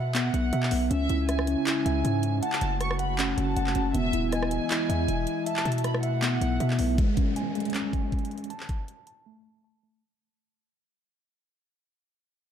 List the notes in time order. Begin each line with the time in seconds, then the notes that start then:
Already playing: B2 E5 F#5
0.15 B3, clap, closed hi-hat
0.34 B1, closed hi-hat
0.53 B2 E5, closed hi-hat
0.63 clap
0.71 B1 B3, open hi-hat
0.91 C#2 C#3 G#3 C#4 E4 E5, closed hi-hat
1.09 C#2 E4, closed hi-hat
1.29 E5 G#5, cross-stick, closed hi-hat
1.39 cross-stick
1.47 C#4, closed hi-hat
1.67 E4, clap, closed hi-hat
1.86 C#2 E5, closed hi-hat
2.05 G#2, closed hi-hat
2.23 closed hi-hat
2.43 A3 F#4 F#5 A5, closed hi-hat
2.53 clap
2.61 F#1, closed hi-hat
2.81 C#6, cross-stick, closed hi-hat
2.91 cross-stick
2.99 F#5 B5, closed hi-hat
3.18 C#4, clap, closed hi-hat
3.38 F#1 A5, closed hi-hat
3.57 F#1 F#5, closed hi-hat
3.67 clap
3.75 F#1 C#4, closed hi-hat
3.94 E1 E3 G#3 B3 E4 E5, closed hi-hat
4.13 D#1 E4, closed hi-hat
4.32 D#5 G#5, cross-stick, closed hi-hat
4.43 cross-stick
4.51 closed hi-hat
4.71 E4, clap, closed hi-hat
4.89 E2 E5, closed hi-hat
5.08 E1, closed hi-hat
5.27 closed hi-hat
5.46 B2 A3 E5 A5, closed hi-hat
5.56 clap
5.65 B2, closed hi-hat
5.72 closed hi-hat
5.78 closed hi-hat
5.84 B5, cross-stick, closed hi-hat
5.94 cross-stick
6.03 E5 F#5, closed hi-hat
6.22 B3, clap, closed hi-hat
6.41 B1, closed hi-hat
6.60 B2 E5, closed hi-hat
6.70 clap
6.79 B1 B3, open hi-hat
6.98 G#3, kick, closed hi-hat, downlifter
7.17 C#4, kick, closed hi-hat
7.36 G#5, closed hi-hat
7.55 G#3, closed hi-hat
7.60 closed hi-hat
7.65 closed hi-hat
7.70 closed hi-hat
7.74 C#4, clap, closed hi-hat
7.93 G#5, kick, closed hi-hat
8.12 kick, closed hi-hat
8.19 closed hi-hat
8.25 closed hi-hat
8.31 closed hi-hat
8.38 closed hi-hat
8.44 closed hi-hat
8.50 A5, closed hi-hat
8.60 clap
8.69 kick, closed hi-hat
8.88 closed hi-hat
9.07 A5, closed hi-hat
9.26 A3
9.64 A5
9.83 A3